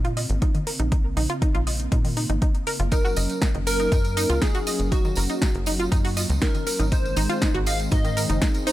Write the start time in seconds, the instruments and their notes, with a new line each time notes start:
Already playing: analog synth bass A#2, analog synth pad C#3 A#3 C4
0.05 synth pluck F4, closed hi-hat
0.17 synth pluck D#5, open hi-hat
0.30 analog synth bass G#1, closed hi-hat
0.42 synth pluck D#4, kick, closed hi-hat
0.55 synth pluck D#3, closed hi-hat
0.67 synth pluck A#4, open hi-hat
0.80 analog synth bass A#1, synth pluck D#4, closed hi-hat
0.92 synth pluck D#4, kick, closed hi-hat
1.17 analog synth bass A#1, synth pluck D#4, open hi-hat
1.30 synth pluck F4, closed hi-hat
1.42 synth pluck D#4, kick, closed hi-hat
1.55 analog synth bass A#1, synth pluck F4, closed hi-hat
1.67 synth pluck D#5, open hi-hat
1.80 closed hi-hat
1.92 analog synth bass A#2, synth pluck D#4, kick, closed hi-hat
2.05 synth pluck D#3, open hi-hat
2.17 synth pluck D#4, open hi-hat
2.30 analog synth bass G#1, synth pluck D#4, closed hi-hat
2.42 synth pluck D#4, kick, closed hi-hat
2.55 closed hi-hat
2.67 synth pluck A#4, open hi-hat
2.80 analog synth bass F#1, synth pluck F4, closed hi-hat
2.91 analog synth pad F#3 C#4, synth pluck D#4, digital synth lead A#4, kick, closed hi-hat, tambourine
3.05 synth pluck F#4, tambourine
3.16 analog synth bass F#1, synth pluck D#5, open hi-hat, tambourine
3.30 closed hi-hat, tambourine
3.42 synth pluck D#4, kick, snare, closed hi-hat, tambourine
3.55 analog synth bass F#1, synth pluck D#3, closed hi-hat
3.67 digital synth lead A#4, synth pluck A#4, open hi-hat, tambourine
3.80 synth pluck D#4, closed hi-hat, tambourine
3.92 analog synth bass F#2, synth pluck D#4, kick, closed hi-hat, tambourine
4.04 closed hi-hat, tambourine
4.17 synth pluck D#4, open hi-hat, tambourine
4.30 analog synth bass C#2, synth pluck F4, closed hi-hat, tambourine
4.42 synth pluck D#4, digital synth lead G#4, kick, snare, closed hi-hat, tambourine
4.55 synth pluck F#4, closed hi-hat, tambourine
4.67 synth pluck D#5, open hi-hat, tambourine
4.79 analog synth bass F#1, closed hi-hat, tambourine
4.92 synth pluck D#4, digital synth lead F#4, kick, closed hi-hat, tambourine
5.05 synth pluck D#3, tambourine
5.15 analog synth bass F#1, synth pluck A#4, open hi-hat, tambourine
5.29 synth pluck D#4, closed hi-hat, tambourine
5.42 synth pluck D#4, kick, snare, closed hi-hat, tambourine
5.55 analog synth bass F#1, closed hi-hat
5.66 synth pluck D#4, open hi-hat, tambourine
5.80 synth pluck F4, closed hi-hat, tambourine
5.92 analog synth bass F#2, synth pluck D#4, kick, closed hi-hat, tambourine
6.05 synth pluck F#4, open hi-hat, tambourine
6.17 synth pluck D#5, open hi-hat, tambourine
6.30 analog synth bass C#2, closed hi-hat, tambourine
6.42 synth pluck D#4, digital synth lead A#4, kick, snare, closed hi-hat, tambourine
6.54 synth pluck D#3, closed hi-hat, tambourine
6.67 synth pluck A#4, open hi-hat, tambourine
6.80 analog synth bass G#1, synth pluck D#4, closed hi-hat, tambourine
6.92 analog synth pad D#3 G#3 C4, synth pluck D#4, digital synth lead C5, kick, closed hi-hat, tambourine
7.05 tambourine
7.16 analog synth bass G#1, synth pluck D#4, open hi-hat, tambourine
7.30 synth pluck F4, closed hi-hat, tambourine
7.42 synth pluck D#4, kick, snare, closed hi-hat, tambourine
7.54 analog synth bass G#1, synth pluck F#4, closed hi-hat
7.66 synth pluck D#5, digital synth lead F5, open hi-hat, tambourine
7.80 closed hi-hat, tambourine
7.91 analog synth bass G#2, synth pluck D#4, digital synth lead D#5, kick, closed hi-hat, tambourine
8.05 synth pluck D#3, closed hi-hat, tambourine
8.17 synth pluck A#4, open hi-hat, tambourine
8.30 analog synth bass F#1, synth pluck D#4, closed hi-hat, tambourine
8.42 synth pluck D#4, kick, snare, closed hi-hat, tambourine
8.54 closed hi-hat, tambourine
8.67 synth pluck D#4, digital synth lead C5, open hi-hat, tambourine